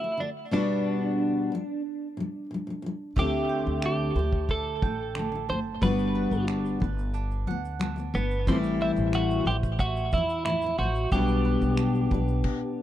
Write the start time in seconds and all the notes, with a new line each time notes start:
Already playing: E4 F#4
0.00 D3 A3
0.17 D3 A3 D4
0.51 B2 G3 B3 D4 F#4
1.52 B2 G3
2.17 B2 G3
2.51 B2 G3
2.67 B2 G3
2.82 B2
2.86 G3
3.16 D2 D3 A3 C4 G4, kick
3.49 C5
3.67 D2
3.82 D4 G4, finger snap
4.16 D2 D3 A3 C5
4.33 kick
4.49 D4 A4, kick
4.82 A1 D3 A3 G5, kick
5.15 D3 A3 D4, finger snap
5.32 D3 A3
5.49 F#1 D3 A3 C5
5.82 G1 G3 B3 D4 F#4 B4, kick, shaker
5.99 shaker
6.15 B4
6.31 G1, shaker
6.47 D4, finger snap, shaker
6.65 shaker
6.80 G1 G3 B3 B4, kick
6.98 shaker
7.14 D4, shaker
7.31 shaker
7.47 D2 G3 B3 F#5
7.65 shaker
7.79 G3 B3 D4, finger snap, shaker
7.96 G3 B3, shaker
8.14 G1 G3 B3 B4, shaker
8.31 shaker
8.47 A1 A2 E3 G3 C4 E4, kick, shaker
8.64 shaker
8.81 E4 C5
8.96 A1, shaker
9.13 E4 F#4, finger snap, shaker
9.31 shaker
9.46 A1 A2 G4 C5
9.50 E3
9.63 kick, shaker
9.79 E4 F#4, kick, shaker
9.96 shaker
10.12 E2 A2 E4, kick, shaker
10.18 E3
10.29 shaker
10.45 A2 E4, finger snap, shaker
10.49 E3
10.62 A2, shaker
10.66 E3
10.78 A1 A2 F#4 C5
10.83 E3
10.95 shaker
11.11 B1 B2 G3 B3 D4 G4, kick, shaker
11.28 shaker
11.45 B4
11.61 B1, shaker
11.77 D4, finger snap, shaker
11.95 shaker
12.11 B1 B2 G3 B4, kick
12.28 shaker
12.44 kick, crash